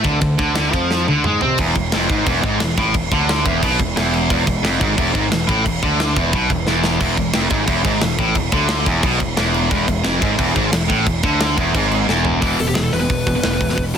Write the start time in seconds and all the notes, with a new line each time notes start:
0.03 D2 D3, kick, ride
0.21 D2 D3, kick, ride
0.39 D2 D3, kick, ride
0.55 D2 D3, snare, ride
0.73 F2 F3, kick, ride
0.91 snare
1.08 D2 D3, high tom
1.24 G#2 G#3, mid tom
1.41 C3 C4, floor tom
1.58 E1 E2, kick, crash
1.75 E1 E2, kick, crash
1.92 F1 F2, snare, crash
2.09 G#1 G#2, kick, crash
2.26 E1 E2, kick, crash
2.43 G#1 G#2, kick, crash
2.60 E1 E2, snare, crash
2.77 A1 A2, kick, crash
2.94 E1 E2, kick, crash
3.12 D2 D3, kick, crash
3.29 snare, crash
3.45 E1 E2, kick, crash
3.63 B1 B2, kick, crash
3.79 E1 E2, kick, crash
3.96 E1 E2, snare, crash
4.14 crash
4.30 E1 E2, kick, crash
4.47 E1 E2, kick, crash
4.63 F1 F2, snare, crash
4.80 G#1 G#2, kick, crash
4.97 E1 E2, kick, crash
5.13 G#1 G#2, kick, crash
5.30 E1 E2, snare, crash
5.47 A1 A2, kick, crash
5.65 E1 E2, kick, crash
5.83 D2 D3, kick, crash
6.00 snare, crash
6.16 E1 E2, kick, crash
6.33 B1 B2, kick, crash
6.50 E1 E2, kick, crash
6.67 E1 E2, snare
6.84 snare
7.00 E1 E2, kick, splash, crash
7.17 E1 E2, kick, crash
7.33 F1 F2, snare, crash
7.50 G#1 G#2, kick, crash
7.67 E1 E2, kick, crash
7.84 G#1 G#2, kick, crash
8.01 E1 E2, snare, crash
8.18 A1 A2, kick, crash
8.35 E1 E2, kick, crash
8.52 D2 D3, kick, crash
8.69 snare, crash
8.86 E1 E2, kick, crash
9.03 B1 B2, kick, crash
9.19 E1 E2, kick, crash
9.37 E1 E2, snare, crash
9.54 crash
9.71 E1 E2, kick, crash
9.88 E1 E2, kick, crash
10.03 F1 F2, snare, crash
10.22 G#1 G#2, kick, crash
10.37 E1 E2, kick, crash
10.55 G#1 G#2, kick, crash
10.72 E1 E2, snare, crash
10.88 A1 A2, kick, crash
11.06 E1 E2, kick, crash
11.23 D2 D3, kick, crash
11.41 snare, crash
11.57 E1 E2, kick, crash
11.74 G#1 G#2, kick, crash
11.92 crash
12.08 E1 E2, snare
12.25 floor tom
12.42 E1 E2 B2 E3, kick, open hi-hat
12.59 E1 E2 B2 A4, open hi-hat
12.68 E2 B2 G4
12.75 E1 E2 B2 G#4, snare, open hi-hat
12.84 A4
12.92 E1 E2 B2 B4, open hi-hat
13.00 E2 B2 B4
13.10 E1 E2 B2, kick, open hi-hat
13.26 E1 E2 B2, kick, open hi-hat
13.35 E2 B2
13.43 E1 E2 B2, snare, open hi-hat
13.53 E2 B2
13.61 E1 E2 B2, kick, open hi-hat
13.69 E2 B2, snare
13.75 E1 E2 B2, kick, open hi-hat
13.94 B2, open hi-hat